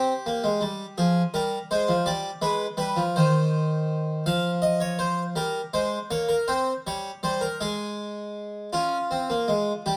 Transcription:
harpsichord
Already playing: C4 G4
0.26 A#3
0.44 G#3
0.61 G3
0.98 F3 G#4
1.34 G3 A#4
1.71 G#3 C5
1.89 F3
2.06 G3 D5
2.42 G#3 B4
2.77 G3 B4
2.96 F3
3.16 D#3 C5
4.26 F3 F5
4.62 D#5
4.80 C#5
4.99 C5
5.36 G3 A#4
5.74 G#3 C5
6.11 A#3 C#5
6.29 A#4
6.48 C4 C5
6.87 G3 C#5
7.23 G3 C5
7.41 A#4
7.61 G#3 G#4
8.73 C#4 F4
9.11 C4
9.30 A#3
9.48 G#3
9.86 G3 G4

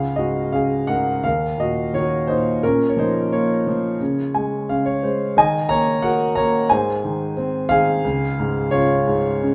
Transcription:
grand piano
Already playing: C#2 G#4 F5
0.16 G#2 F#4 D#5
0.53 C#3 G#4 F5
0.87 G#2 A#4 F#5
1.23 D#2 A#4 F5
1.58 A#2 F#4 D#5
1.93 D#3 F#4 C#5
2.27 A#2 D#4 C5
2.63 A#2 C#4 A#4
2.89 C#5
2.96 F3 D#4 C5
3.31 A#3 F4 C#5
3.67 F3
4.01 C#3
4.35 G#3 G#5
4.69 C#3 F5
4.86 C#5
5.03 G#3 C5
5.37 D#3 D#5 G#5
5.69 A#3 C#5 A#5
6.02 F#4 A#4 F#5
6.35 A#3 C#5 A#5
6.70 G#2 C5 G#5
7.04 D#3
7.37 C4
7.69 D#3 G#4 F5
8.05 C#2
8.40 G#2
8.71 C#3 F4 C#5
9.07 G#2
9.43 C#3

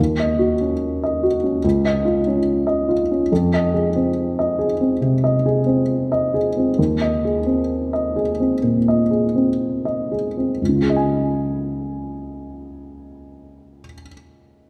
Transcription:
grand piano
0.00 D#2
0.20 D#5
0.39 F#4
0.61 C#4
1.03 D#5
1.23 F#4
1.44 C#4
1.64 C#2
1.85 D#5
2.05 F4
2.27 C#4
2.67 D#5
2.89 F4
3.11 C#4
3.32 F2
3.54 D#5
3.74 G#4
3.96 C4
4.39 D#5
4.59 G#4
4.81 C4
5.01 C3
5.24 D#5
5.46 G#4
5.66 C4
6.12 D#5
6.34 G#4
6.57 C4
6.79 D#2
7.01 D#5
7.25 G#4
7.46 C4
7.93 D#5
8.16 G#4
8.40 C4
8.63 A#2
8.88 D#5
9.11 G#4
9.35 C4
9.85 D#5
10.12 G#4
10.37 C4
10.61 C#2
10.69 C#3
10.76 F4
10.82 G#4
10.90 D#5
10.96 G#5

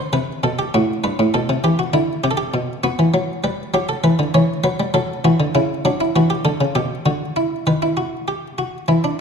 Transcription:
harpsichord
Already playing: C5
0.13 C3 B4
0.43 B2 A4
0.59 G4
0.74 A2 F#4
1.04 G2 B4
1.19 A2
1.34 B2 A4
1.49 C3
1.64 E3 G4
1.79 F#4
1.93 D3 E4
2.24 C3 G4
2.31 A4
2.37 G4
2.54 B2
2.83 B3 F#4
2.99 E3
3.14 F#3
3.44 G3 B4
3.74 F#3 G4
3.89 A4
4.04 E3 B4
4.19 D3
4.34 E3 C#5
4.64 F#3 B4
4.80 G3
4.94 F#3 A4
5.24 E3 F#4
5.40 D3
5.55 C#3 E4
5.85 F#3 D4
6.00 E4
6.16 E3 F#4
6.30 G4
6.45 D3 A4
6.61 C#3
6.75 B2 G4
7.06 D3 F#4
7.36 E4
7.67 D#3 B4
7.82 E4
7.97 F#4
8.28 G4
8.58 F#4
8.88 E3 E4
9.04 D4

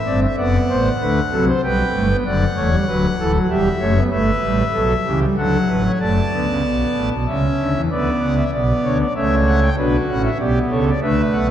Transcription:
pipe organ
Already playing: E5
0.06 G1 G2 C4 D5
0.22 E5
0.38 F#1 F#2 B3 D5 F#5
0.69 A1 A2 C5
1.01 D2 D3 A3 B4
1.31 C2 C3 F#3 A4
1.48 C5
1.63 B1 B2 G3 B4 G5
1.94 G1 G2 A3
2.10 B3
2.25 F#1 F#2 D3 D5 F#5
2.56 E1 E2 A3 C#5
2.71 G3
2.87 D1 D2 F#3 B4
3.19 D1 D2 E3 A4
3.34 F#3
3.49 E1 E2 G3 G4 E5
3.80 F#1 F#2 A3 C#5
3.96 B3
4.11 G1 G2 A3 B4 E5
4.43 A1 A2 G3
4.74 B1 B2 F#3 A4
5.05 C#2 C#3 E3 G4
5.22 G3
5.37 D2 D3 F#3 A4 F#5
5.69 A1 A2 B4
5.85 C#5
6.00 F#1 F#2 A3 D5 A5
6.32 D2 D3 B3
6.48 C#2 C#3
6.64 B1 B2
6.95 A1 A2
7.12 B1 B2
7.27 C#2 C#3 C#4 E5
7.59 D2 D3
7.75 E2 E3
7.91 D2 D3 B3 B4 D5
8.21 C#2 C#3 F#5
8.37 E5
8.53 B1 B2 B3 D5
8.84 D2 D3 C#5
9.00 D5
9.16 C#2 C#3 A3 C#5 E5
9.47 F#5
9.62 G5
9.77 B1 B2 D4 F#4 B4
10.09 A1 A2 C#4 F#5
10.24 E5
10.39 B1 B2 B3 G4 D5
10.71 C#2 C#3 A4 C#5
10.86 D5
11.01 D2 D3 A3 B4 E5
11.33 B1 B2 F#5

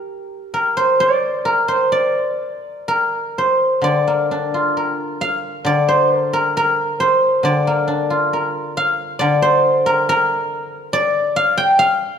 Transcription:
guzheng
Already playing: G4 A#4
0.54 A#4
0.77 C5
1.00 D5
1.45 A#4
1.68 C5
1.92 D5
2.88 A#4
3.38 C5
3.82 D3 D5
4.07 A#3
4.31 D4
4.54 F4
4.77 A#4
5.21 F5
5.65 D3 D5
5.88 C5
6.15 A#4
6.33 A#4
6.57 A#4
7.00 C5
7.43 D3 D5
7.67 A#3
7.88 D4
8.10 F4
8.33 A#4
8.77 F5
9.19 D3 D5
9.42 C5
9.86 A#4
10.09 A#4
10.93 D5
11.36 F5
11.58 G5
11.79 F5

